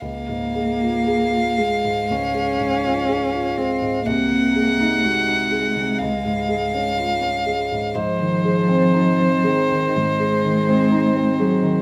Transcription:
<<
  \new Staff \with { instrumentName = "Violin" } { \time 4/4 \key des \major \tempo 4 = 61 f''1 | ges''2 f''2 | c''1 | }
  \new Staff \with { instrumentName = "Cello" } { \clef bass \time 4/4 \key des \major bes4. aes8 des'4. c'8 | bes4 aes2~ aes8 r8 | f4. ees8 aes4. ges8 | }
  \new Staff \with { instrumentName = "Grand piano" } { \clef bass \time 4/4 \key des \major des,16 aes,16 aes16 f'16 aes'16 f'16 aes16 aes,16 des,16 aes16 aes,16 f'16 aes'16 f'16 aes16 aes,16 | c,16 c16 aes16 ees'16 ges'16 ees'16 aes16 c16 des,16 aes,16 aes16 des'16 f'16 des'16 aes16 aes,16 | aes,16 ees16 aes16 c'16 ees'16 c'16 aes16 ees16 aes,16 aes16 ees16 c'16 ees'16 c'16 aes16 ees16 | }
>>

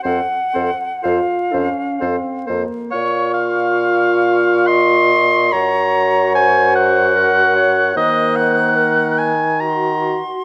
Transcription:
<<
  \new Staff \with { instrumentName = "Flute" } { \time 3/4 \key bes \minor \tempo 4 = 70 ges''4 f''4. r8 | des'''2.~ | des'''2. | ges'''4. r8 c'''4 | }
  \new Staff \with { instrumentName = "Oboe" } { \time 3/4 \key bes \minor c''8 c''8 c''8 c''8 c''8 c''8 | des''8 f''4. c'''4 | bes''4 aes''8 ges''4. | ees''8 ges''4 aes''8 bes''8 r8 | }
  \new Staff \with { instrumentName = "Clarinet" } { \time 3/4 \key bes \minor a'8 a'8 a'8 a'8 a'8 a'8 | f''2 ees''4 | des''4 c''4 bes'8 des''8 | c''4 bes'8 r8 ges'4 | }
  \new Staff \with { instrumentName = "French horn" } { \time 3/4 \key bes \minor c'8 c'8 f'8 des'8 c'8 bes8 | f'2. | ges'2. | bes4. r8 ges'4 | }
  \new Staff \with { instrumentName = "Bassoon" } { \clef bass \time 3/4 \key bes \minor f,8 f,8 f,8 f,8 f,8 f,8 | bes,2. | ges,2. | ees2~ ees8 r8 | }
>>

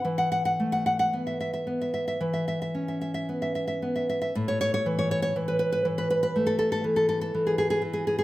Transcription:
\new Staff \with { instrumentName = "Nylon-string guitar" } { \time 4/4 \key a \major \tempo 4 = 58 << { r32 fis''32 fis''32 fis''32 r32 fis''32 fis''32 fis''32 r32 e''32 e''32 e''32 r32 e''32 e''32 e''32 r32 e''32 e''32 e''32 r32 e''32 e''32 e''32 r32 e''32 e''32 e''32 r32 e''32 e''32 e''32 | r32 cis''32 cis''32 cis''32 r32 cis''32 cis''32 cis''32 r32 b'32 b'32 b'32 r32 b'32 b'32 b'32 r32 a'32 a'32 a'32 r32 a'32 a'32 a'32 r32 gis'32 gis'32 gis'32 r32 gis'32 gis'32 gis'32 | } \\ { e8 a8 b8 b8 e8 cis'8 b8 b8 | a,8 e8 e8 e8 a8 e8 e8 e8 | } >> }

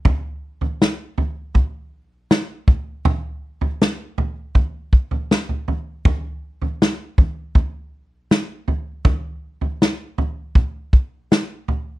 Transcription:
\new DrumStaff \with { instrumentName = "Drums" } \drummode { \time 4/4 \tempo 4 = 80 <bd tomfh>8. tomfh16 sn8 tomfh8 <bd tomfh>4 sn8 <bd tomfh>8 | tomfh8. tomfh16 sn8 tomfh8 <bd tomfh>8 bd16 tomfh16 sn16 tomfh16 tomfh8 | <bd tomfh>8. tomfh16 sn8 <bd tomfh>8 <bd tomfh>4 sn8 tomfh8 | <bd tomfh>8. tomfh16 sn8 tomfh8 <bd tomfh>8 bd8 sn8 tomfh8 | }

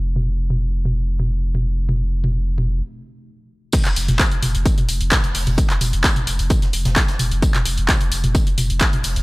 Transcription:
<<
  \new Staff \with { instrumentName = "Sub bass" } { \clef bass \time 4/4 \key c \phrygian \tempo 4 = 130 f,,1~ | f,,2 r2 | r8 f,,16 f,,16 r16 f,,16 f,,16 f,,16 r8 f,,16 f,,16 r16 f,,16 f,,16 f,,16 | r8 f,,16 f,,16 r16 f,,16 f,,16 f,,16 r8 f,,16 f,,16 r16 f,,16 f,,16 f,,16 |
r8 f,,16 f,,16 r16 f,,16 f,,16 f,,16 r8 f,,16 f,,16 r16 f,,16 f,,16 f,,16 | }
  \new DrumStaff \with { instrumentName = "Drums" } \drummode { \time 4/4 r16 toml8. toml8. toml16 r8 toml8 r16 toml8. | toml8. toml16 r8 toml8 r4 r4 | <cymc hh bd tamb toml>16 <hc hh>16 <hho tamb>16 <hh toml>16 <hc hh bd sn tamb>16 hh16 <hho tamb toml>16 hh16 <hh bd tamb>16 <hh toml>16 <hho tamb>16 hh16 <hc hh bd sn tamb toml>16 hh16 hho16 <hh toml>16 | <hh bd tamb>16 <hc hh>16 <hho tamb toml>16 hh16 <hc hh bd sn tamb>16 <hh toml>16 <hho tamb>16 hho16 <hh bd tamb toml>16 <hh sn>16 <hho tamb>16 <hh sn toml>16 <hc hh bd sn tamb>16 <hh sn>16 <hho tamb toml>16 hh16 |
<hh bd tamb>16 <hc hh toml>16 <hho tamb>16 hh16 <hc hh bd sn tamb toml>16 hh16 <hho tamb>16 <hh toml>16 <hh bd tamb>16 hh16 <hho tamb toml>16 hh16 <hc hh bd sn tamb>16 <hh toml>16 hho16 hh16 | }
>>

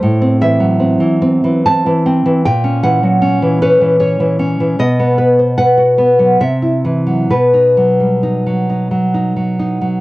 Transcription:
\new Staff \with { instrumentName = "Nylon-string guitar" } { \time 3/4 \key b \phrygian \tempo 4 = 74 << { c''8 e''4. a''4 | g''8 fis''4 b'8 cis''4 | dis''4 fis''4 e''4 | b'2 r4 | } \\ { a,16 c'16 e16 fis16 c'16 e16 c'16 e16 c'16 e16 c'16 e16 | ais,16 cis'16 e16 fis16 cis'16 e16 cis'16 e16 cis'16 e16 cis'16 e16 | b,16 b16 b'16 c''16 b'16 fis'16 b16 fis16 c16 e'16 e16 fis16 | b,16 dis'16 fis16 g16 dis'16 fis16 dis'16 fis16 dis'16 fis16 dis'16 fis16 | } >> }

